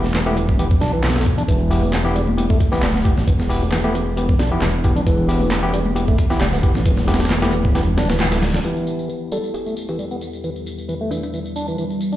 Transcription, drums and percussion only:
0.04 snare soft
0.04 high bongo medium
0.04 high conga medium
0.14 snare loud
0.14 clap loud
0.14 closed hi-hat medium
0.37 closed hi-hat medium
0.37 high bongo medium
0.37 low conga medium
0.49 kick medium
0.59 closed hi-hat medium
0.71 kick medium
0.71 low conga medium
0.80 snare soft
0.80 closed hi-hat medium
0.80 high bongo medium
1.03 snare medium
1.03 clap loud
1.03 closed hi-hat medium
1.10 snare medium
1.10 closed hi-hat medium
1.16 snare medium
1.16 closed hi-hat medium
1.21 snare medium
1.21 closed hi-hat medium
1.26 kick medium
1.26 closed hi-hat medium
1.38 closed hi-hat soft
1.38 low conga medium
1.49 kick loud
1.49 closed hi-hat medium
1.71 open hi-hat medium
1.82 high bongo soft
1.82 high conga medium
1.93 snare loud
1.93 clap loud
1.93 closed hi-hat medium
2.16 closed hi-hat medium
2.16 high bongo medium
2.27 high conga medium
2.38 closed hi-hat medium
2.50 kick medium
2.60 kick loud
2.60 closed hi-hat medium
2.60 high bongo medium
2.73 snare medium
2.82 snare loud
2.82 clap loud
2.82 closed hi-hat medium
2.95 snare soft
3.05 kick medium
3.05 closed hi-hat medium
3.17 snare soft
3.17 low conga medium
3.28 kick loud
3.28 closed hi-hat medium
3.40 snare soft
3.50 open hi-hat medium
3.62 high bongo soft
3.62 high conga medium
3.72 snare loud
3.72 clap loud
3.72 closed hi-hat medium
3.95 closed hi-hat medium
3.95 high bongo medium
4.17 closed hi-hat medium
4.29 kick medium
4.29 low conga medium
4.39 snare loud
4.39 closed hi-hat medium
4.39 high bongo medium
4.61 snare loud
4.61 clap loud
4.61 closed hi-hat medium
4.84 kick medium
4.84 closed hi-hat medium
4.96 closed hi-hat soft
4.96 low conga medium
5.07 kick loud
5.07 closed hi-hat medium
5.29 open hi-hat medium
5.40 high bongo medium
5.40 high conga medium
5.51 snare loud
5.51 clap loud
5.51 closed hi-hat medium
5.74 closed hi-hat medium
5.74 high bongo medium
5.85 high conga medium
5.96 closed hi-hat medium
6.08 kick loud
6.18 kick medium
6.18 closed hi-hat medium
6.18 high bongo medium
6.30 snare medium
6.41 snare loud
6.41 clap loud
6.41 closed hi-hat medium
6.53 snare soft
6.63 kick medium
6.63 closed hi-hat medium
6.74 snare medium
6.74 low conga loud
6.86 kick loud
6.86 closed hi-hat medium
6.97 snare soft
6.97 high conga medium
7.08 snare medium
7.08 closed hi-hat medium
7.14 snare medium
7.14 closed hi-hat medium
7.19 snare medium
7.19 closed hi-hat medium
7.19 high bongo soft
7.19 high conga medium
7.25 snare medium
7.25 closed hi-hat medium
7.30 snare loud
7.30 clap loud
7.30 closed hi-hat medium
7.42 snare loud
7.42 closed hi-hat medium
7.42 high conga medium
7.53 closed hi-hat medium
7.53 high bongo medium
7.53 low conga medium
7.64 kick medium
7.64 high conga medium
7.75 snare loud
7.75 closed hi-hat medium
7.87 low conga medium
7.97 snare loud
7.97 closed hi-hat medium
7.97 high bongo medium
8.10 snare loud
8.10 closed hi-hat medium
8.20 snare loud
8.20 clap loud
8.20 closed hi-hat medium
8.32 snare loud
8.32 closed hi-hat medium
8.42 snare loud
8.42 closed hi-hat medium
8.54 snare loud
8.54 closed hi-hat medium
8.54 low conga loud
8.65 tambourine soft
8.77 tambourine soft
8.87 tambourine medium
8.99 tambourine soft
9.10 tambourine soft
9.32 tambourine medium
9.44 tambourine soft
9.54 tambourine soft
9.66 tambourine soft
9.77 tambourine medium
9.89 tambourine soft
9.99 tambourine soft
10.11 tambourine soft
10.21 tambourine medium
10.33 tambourine soft
10.44 tambourine soft
10.56 tambourine soft
10.66 tambourine medium
10.78 tambourine soft
10.89 tambourine soft
11.11 tambourine medium
11.23 tambourine soft
11.34 tambourine soft
11.46 tambourine soft
11.56 tambourine medium
11.68 tambourine soft
11.78 tambourine soft
11.90 tambourine soft
12.01 tambourine medium
12.12 tambourine soft

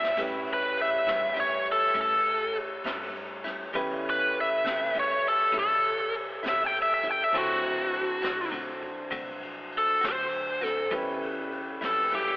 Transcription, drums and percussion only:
0.04 snare medium
0.17 kick loud
0.17 crash medium
0.47 ride medium
0.76 ride medium
1.06 snare loud
1.06 ride medium
1.36 ride medium
1.65 kick medium
1.65 ride medium
1.95 kick loud
1.95 ride medium
2.25 ride medium
2.55 ride medium
2.84 snare loud
2.84 ride medium
3.15 ride medium
3.44 snare soft
3.44 ride medium
3.75 kick loud
3.75 ride medium
4.04 ride medium
4.35 ride medium
4.64 snare loud
4.64 ride medium
4.95 ride medium
5.24 kick medium
5.24 ride medium
5.54 kick loud
5.54 ride medium
5.84 ride medium
6.13 ride medium
6.43 snare loud
6.43 ride medium
6.74 ride medium
7.03 kick medium
7.03 ride medium
7.33 kick loud
7.33 ride medium
7.63 ride medium
7.93 ride medium
8.22 snare loud
8.22 ride medium
8.53 ride medium
8.82 kick medium
8.82 ride medium
9.12 kick loud
9.12 ride medium
9.43 ride medium
9.72 ride medium
10.02 snare loud
10.02 ride medium
10.32 ride medium
10.62 snare soft
10.62 ride medium
10.92 kick loud
10.92 ride medium
11.22 ride medium
11.52 ride medium
11.81 snare loud
11.81 ride medium
12.11 ride medium

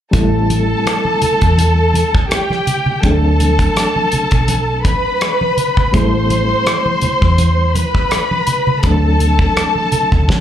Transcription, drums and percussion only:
0.13 kick medium
0.13 closed hi-hat medium
0.50 closed hi-hat medium
0.50 muted conga soft
0.50 high conga medium
0.86 cross-stick medium
0.86 closed hi-hat medium
0.86 muted conga soft
1.05 high conga medium
1.22 closed hi-hat medium
1.22 low conga medium
1.41 kick medium
1.41 closed hi-hat soft
1.58 closed hi-hat medium
1.58 high conga medium
1.94 closed hi-hat medium
1.94 high conga medium
2.15 kick medium
2.30 cross-stick loud
2.30 closed hi-hat medium
2.30 muted conga soft
2.50 cross-stick soft
2.50 high conga medium
2.67 closed hi-hat medium
2.67 muted conga soft
2.67 low conga medium
2.86 low conga medium
3.03 kick medium
3.03 closed hi-hat medium
3.40 closed hi-hat medium
3.40 high conga medium
3.59 kick medium
3.59 closed hi-hat soft
3.76 cross-stick medium
3.76 closed hi-hat medium
3.76 muted conga soft
3.96 high conga medium
4.12 closed hi-hat medium
4.12 low conga medium
4.31 kick medium
4.31 closed hi-hat soft
4.48 closed hi-hat medium
4.48 muted conga soft
4.48 high conga medium
4.85 kick medium
4.85 closed hi-hat medium
4.85 high conga medium
5.21 cross-stick loud
5.21 closed hi-hat medium
5.21 muted conga soft
5.41 high conga medium
5.57 closed hi-hat medium
5.57 muted conga soft
5.57 low conga medium
5.77 kick medium
5.77 low conga medium
5.94 kick medium
5.94 closed hi-hat medium
6.30 closed hi-hat medium
6.30 muted conga soft
6.30 high conga medium
6.66 cross-stick medium
6.66 closed hi-hat medium
6.86 high conga medium
7.01 closed hi-hat medium
7.01 muted conga soft
7.01 low conga medium
7.22 kick medium
7.38 closed hi-hat medium
7.38 muted conga soft
7.38 high conga medium
7.75 closed hi-hat medium
7.75 muted conga soft
7.75 high conga medium
7.95 kick medium
8.11 cross-stick medium
8.11 closed hi-hat medium
8.31 high conga medium
8.47 closed hi-hat medium
8.47 muted conga soft
8.47 low conga medium
8.67 low conga medium
8.83 kick loud
8.83 closed hi-hat medium
9.20 closed hi-hat medium
9.20 high conga medium
9.39 kick medium
9.57 cross-stick medium
9.57 closed hi-hat medium
9.76 high conga medium
9.92 closed hi-hat medium
9.92 muted conga soft
9.92 low conga medium
10.12 kick medium
10.28 kick medium
10.28 snare soft
10.28 high conga medium

